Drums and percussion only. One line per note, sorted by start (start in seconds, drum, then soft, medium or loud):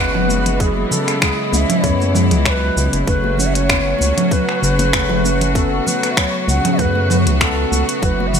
0.14 high bongo medium
0.14 low conga medium
0.29 high conga medium
0.29 shaker medium
0.46 closed hi-hat medium
0.46 low conga medium
0.46 shaker soft
0.60 kick loud
0.60 closed hi-hat soft
0.60 shaker soft
0.77 high conga medium
0.91 low conga loud
0.91 shaker medium
1.08 finger snap soft
1.08 closed hi-hat medium
1.08 high conga soft
1.08 shaker soft
1.21 finger snap medium
1.21 kick loud
1.21 closed hi-hat soft
1.21 high bongo medium
1.21 shaker soft
1.52 high conga medium
1.52 shaker medium
1.70 closed hi-hat medium
1.70 low conga medium
1.70 shaker soft
1.84 kick loud
1.84 closed hi-hat soft
1.84 shaker soft
2.00 high conga medium
2.00 shaker soft
2.15 low conga medium
2.15 shaker medium
2.31 closed hi-hat medium
2.31 low conga loud
2.31 shaker soft
2.46 finger snap loud
2.46 kick loud
2.46 closed hi-hat soft
2.46 shaker soft
2.77 shaker medium
2.93 closed hi-hat soft
2.93 shaker soft
3.07 kick loud
3.07 closed hi-hat soft
3.07 shaker soft
3.24 high bongo soft
3.24 high conga medium
3.38 low conga medium
3.38 shaker medium
3.55 closed hi-hat medium
3.55 shaker soft
3.69 finger snap loud
3.69 kick loud
3.69 closed hi-hat soft
3.69 high bongo medium
3.69 shaker soft
3.99 high conga medium
3.99 shaker medium
4.18 closed hi-hat medium
4.18 low conga medium
4.18 shaker soft
4.31 kick loud
4.31 closed hi-hat soft
4.31 shaker soft
4.49 finger snap soft
4.62 high bongo soft
4.62 shaker medium
4.79 closed hi-hat medium
4.79 high conga medium
4.79 low conga medium
4.79 shaker soft
4.93 finger snap loud
4.93 kick loud
4.93 closed hi-hat soft
4.93 shaker soft
5.09 high bongo medium
5.09 low conga medium
5.24 high conga medium
5.24 shaker medium
5.41 closed hi-hat medium
5.41 low conga medium
5.41 shaker soft
5.55 kick loud
5.55 closed hi-hat soft
5.55 shaker soft
5.87 low conga medium
5.87 shaker medium
6.03 finger snap soft
6.03 closed hi-hat medium
6.03 high conga soft
6.03 shaker soft
6.17 finger snap loud
6.17 kick loud
6.17 closed hi-hat soft
6.17 high bongo medium
6.17 shaker soft
6.48 high conga medium
6.48 shaker medium
6.65 closed hi-hat medium
6.65 low conga medium
6.65 shaker soft
6.79 kick medium
6.79 closed hi-hat soft
6.79 shaker soft
6.95 high conga medium
7.10 low conga medium
7.10 shaker medium
7.26 closed hi-hat medium
7.26 low conga medium
7.26 shaker soft
7.41 finger snap medium
7.41 kick loud
7.41 closed hi-hat soft
7.41 shaker soft
7.73 shaker medium
7.89 closed hi-hat medium
7.89 shaker soft
8.03 kick loud
8.03 closed hi-hat soft
8.03 shaker soft
8.19 high bongo soft
8.19 high conga medium
8.33 low conga medium
8.33 shaker medium